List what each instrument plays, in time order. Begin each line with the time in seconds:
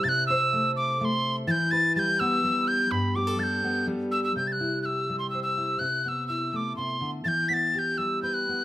Already playing: steel-string acoustic guitar E4
0.04 steel-string acoustic guitar C3, tin whistle A6
0.09 tin whistle F#6
0.27 steel-string acoustic guitar C5, tin whistle E6
0.53 steel-string acoustic guitar A3
0.76 tin whistle D6
1.00 steel-string acoustic guitar A3, tin whistle D6
1.05 tin whistle C6
1.47 steel-string acoustic guitar E3, tin whistle G6 A6
1.71 steel-string acoustic guitar B4, tin whistle A6
1.96 steel-string acoustic guitar G3, tin whistle G6 A6
2.20 steel-string acoustic guitar B3, tin whistle E6
2.44 steel-string acoustic guitar G3
2.68 tin whistle G6
2.91 steel-string acoustic guitar G2, tin whistle B5
3.16 steel-string acoustic guitar G4, tin whistle D6
3.27 steel-string acoustic guitar A4
3.39 steel-string acoustic guitar G3, tin whistle A6
3.43 tin whistle G6
3.64 steel-string acoustic guitar B3
3.87 steel-string acoustic guitar G3
4.12 tin whistle E6
4.24 tin whistle E6
4.36 steel-string acoustic guitar C3, tin whistle G6
4.47 tin whistle A6
4.52 tin whistle F#6
4.61 steel-string acoustic guitar E4
4.82 steel-string acoustic guitar G4, tin whistle E6 F#6
5.09 steel-string acoustic guitar G3
5.19 tin whistle C6
5.30 steel-string acoustic guitar C5, tin whistle E6
5.43 tin whistle E6
5.58 steel-string acoustic guitar E4
5.79 steel-string acoustic guitar C3, tin whistle F#6
6.04 steel-string acoustic guitar B3, tin whistle F#6
6.08 tin whistle E6
6.28 steel-string acoustic guitar E4, tin whistle E6
6.52 steel-string acoustic guitar A3, tin whistle E6
6.56 tin whistle D6
6.77 steel-string acoustic guitar C3, tin whistle C6
7.01 steel-string acoustic guitar D3
7.24 steel-string acoustic guitar E3, tin whistle G6 A6
7.49 steel-string acoustic guitar B3, tin whistle B6
7.54 tin whistle A6
7.74 steel-string acoustic guitar G4, tin whistle A6
7.79 tin whistle G6
7.98 steel-string acoustic guitar G3, tin whistle E6
8.23 steel-string acoustic guitar B4, tin whistle G6
8.34 tin whistle F#6
8.49 steel-string acoustic guitar B3